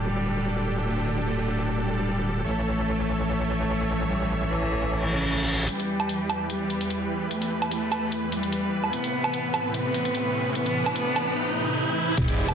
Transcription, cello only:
0.01 0.75 G3 medium
0.82 1.15 A3 medium
1.23 1.76 A3 medium
1.84 2.37 G3 medium
2.44 3.18 A3 loud
3.25 3.99 A3 medium
4.07 4.40 G3 medium
4.47 5.00 E3 medium
5.08 5.61 C#3 medium
5.69 6.42 G3 loud
6.50 7.23 G3 medium
7.31 7.64 A3 medium
7.71 8.25 A3 loud
8.32 8.86 G3 loud
8.93 9.67 B3 medium
9.74 10.48 B3 loud
10.55 10.94 B3 loud
10.96 11.35 B3 loud

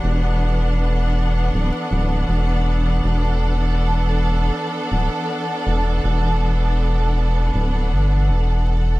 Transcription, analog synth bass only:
0.04 1.50 E1 loud
1.54 1.71 D1 loud
1.91 2.25 D1 loud
2.29 3.00 E1 medium
3.04 4.51 E1 loud
4.92 5.09 D1 medium
5.67 6.00 E1 medium
6.04 7.51 E1 loud
7.54 7.93 D1 loud
7.92 8.31 G1 medium
8.29 9.00 E1 loud

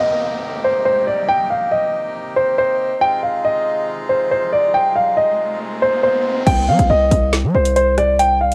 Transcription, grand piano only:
0.00 0.40 D#5 medium
0.64 0.82 C5 medium
0.85 1.03 C5 medium
1.07 1.25 D5 medium
1.29 1.46 G5 loud
1.50 1.68 F5 medium
1.71 2.12 D#5 medium
2.36 2.54 C5 medium
2.58 2.99 C5 medium
3.01 3.19 G5 loud
3.23 3.41 F5 medium
3.45 3.85 D#5 medium
4.09 4.27 C5 medium
4.31 4.49 C5 medium
4.53 4.70 D5 medium
4.74 4.92 G5 medium
4.96 5.13 F5 medium
5.17 5.58 D#5 medium
5.82 6.00 C5 medium
6.03 6.44 C5 medium
6.47 6.64 G5 loud
6.68 6.86 F5 medium
6.90 7.30 D#5 medium
7.55 7.73 C5 medium
7.76 7.94 C5 medium
7.98 8.16 D5 medium
8.19 8.37 G5 loud
8.41 8.55 F5 medium

